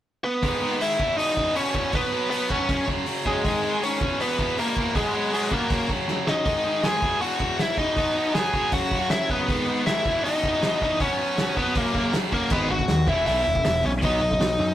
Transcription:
0.24 B3 B4
0.42 G#2 D#3 G#3, kick, open hi-hat
0.61 G#2 D#3 G#3
0.80 G#2 D#3 G#3 E4 E5, open hi-hat
0.98 E2 B2 E3, kick
1.17 E2 B2 E3 D#4 D#5, open hi-hat
1.35 E2 B2 E3, kick
1.55 E2 B2 E3 C#4 C#5, open hi-hat
1.74 E2 B2 E3, kick
1.92 B2 F#3 B3 B4, kick, open hi-hat
2.11 B2 F#3 B3
2.30 B2 F#3 B3 B4, open hi-hat
2.49 B2 F#3 B3 C#4 C#5, kick
2.68 F#2 C#3 F#3, kick, open hi-hat
2.88 F#2 C#3 F#3, kick
3.06 F#2 C#3 F#3, open hi-hat
3.26 F#2 C#3 F#3 G#3 G#4, kick
3.44 G#2 D#3 G#3, kick, open hi-hat
3.63 G#2 D#3 G#3
3.82 G#2 D#3 G#3 C#4 C#5, open hi-hat
4.00 E2 B2 E3, kick
4.19 E2 B2 E3 B3 B4, open hi-hat
4.38 E2 B2 E3, kick
4.56 E2 B2 E3 A#3 A#4, open hi-hat
4.76 E2 B2 E3, kick
4.94 B2 F#3 G#3 B3 G#4, kick, open hi-hat
5.12 B2 F#3 B3
5.31 B2 F#3 G#3 B3 G#4, open hi-hat
5.49 B2 F#3 A#3 B3, kick
5.54 A#4
5.69 F#2 C#3 F#3, kick, open hi-hat
5.87 F#2 C#3 F#3, kick
6.07 F#2 C#3 F#3, snare
6.26 F#2 C#3 F#3 D#4 D#5, snare
6.45 G#2 D#3 G#3, kick, open hi-hat
6.65 G#2 D#3 G#3
6.83 G#2 D#3 G#3 G#4 G#5, snare, open hi-hat
7.02 E2 B2 E3, kick
7.21 E2 B2 E3 F#4 F#5, open hi-hat
7.39 E2 B2 E3, kick
7.59 E2 B2 E3 E4 E5, snare, open hi-hat
7.77 E2 B2 E3 D#4 D#5, kick
7.97 B2 F#3 B3, kick, open hi-hat
8.15 B2 F#3 B3
8.34 B2 F#3 B3 G#4 G#5, snare, open hi-hat
8.53 B2 F#3 B3, kick
8.72 F#2 C#3 F#3 F#4 F#5, kick, open hi-hat
8.91 F#2 C#3 F#3, kick
9.10 F#2 C#3 F#3 E4 E5, snare, open hi-hat
9.29 F#2 C#3 F#3 B3 B4, kick
9.48 G#2 D#3 G#3, kick, open hi-hat
9.67 G#2 D#3 G#3
9.86 G#2 D#3 G#3 E4 E5, snare, open hi-hat
10.05 E2 B2 E3, kick
10.24 E2 B2 E3 D#4 D#5, open hi-hat
10.42 E2 B2 E3, kick
10.61 E2 B2 E3, snare, open hi-hat
10.80 E2 B2 E3 D#4 D#5, kick
10.99 B2 F#3 B3 C#4 C#5, kick, open hi-hat
11.17 B2 F#3 B3
11.21 B2 B3
11.37 B2 F#3 B3, snare, open hi-hat
11.55 B2 F#3 B3 B4, kick
11.75 F#2 C#3 F#3 A#3 A#4, kick, open hi-hat
11.94 F#2 C#3 F#3, kick
12.13 F#2 C#3 F#3, snare, open hi-hat
12.31 F#2 C#3 F#3 A#3 A#4, kick
12.50 G#1 G#2 D#3 G#3 B3 B4, kick, crash
12.69 G#1 G#2 D#3 F#4 F#5
12.79 kick
12.88 D#2 G#2 D#3, snare, open hi-hat
13.07 E1 E2 B2 E3 E4 E5, kick
13.26 B1 E2 B2 E3 E4 E5, open hi-hat
13.45 E1 E2 B2
13.55 kick
13.64 E1 E2 B2 E4 E5, snare, open hi-hat
13.83 B1 E2 B2 C#4 C#5
14.01 B1 B2 F#3 B3 D#4 D#5, kick, open hi-hat
14.20 B1 B2 F#3
14.31 kick
14.40 B1 B2 F#3, snare, open hi-hat
14.59 F#2 B2 F#3

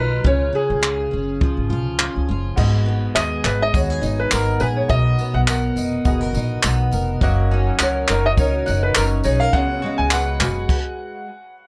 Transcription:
Already playing: B1 D#3 F#3 D#4 F4 B4
0.24 C#2 C#3 F4 C#5, kick
0.53 C#4 G#4
0.70 C#2
0.82 F4, clap
1.11 F#1 C#4
1.41 F3, kick
1.57 G#1
1.69 B1 F4
1.86 C#2
1.99 C#4, clap
2.16 C#2
2.29 F#1 F4
2.56 G#1 G#2 B3 F#4 G#4 D#5, kick, crash, tambourine
2.86 B3
3.15 D#2 G#4 D#5, clap, tambourine
3.44 G#1 D#4 B4, clap, tambourine
3.62 D#5
3.73 D#2 B3 F#4 G#4 C#5 D#5, kick, tambourine
3.90 G#4
4.01 G#1 D#4, tambourine
4.20 B4
4.31 G#1 B3 A#4, clap, tambourine
4.60 A#1 G#4 B4, tambourine
4.77 C#5
4.88 B1 B2 B3 F#4 A#4 D#5, kick, tambourine
5.19 B3, tambourine
5.34 B1 F#5
5.47 A#4 F#5, clap, tambourine
5.76 F1 D#4, tambourine
6.05 F#1 B3 F#4 G#4 A#4 D#5, kick, tambourine
6.21 A#4
6.34 A#1 D#4, tambourine
6.63 B1 B3, clap, tambourine
6.91 F1 A#4, tambourine
7.21 F#1 F#3 A#3 C#4 F#4 A#4 D#5 F#5, kick, tambourine
7.51 C#4 D#4
7.79 C#2 A#4 C#5 F#5, clap, tambourine
8.08 F#1 D#4 A#4 C#5, clap, tambourine
8.26 D#5
8.37 C#2 C#4 D#4 F#4 A#4 C#5 D#5, kick, tambourine
8.66 F#1 D#4 F#5, tambourine
8.83 B4
8.95 F#1 C#4 A#4 C#5, clap, tambourine
9.23 B1 D#4 G#4 C#5, tambourine
9.40 A#4 F5
9.53 C#2 C#3 G#3 B3 F#4 G#4 C#5 F#5, kick
9.82 G#3 F#4
9.98 C#2 G#5
10.11 B4 F#5, clap, tambourine
10.40 F#1 F#4 B4, clap, tambourine
10.69 kick, crash

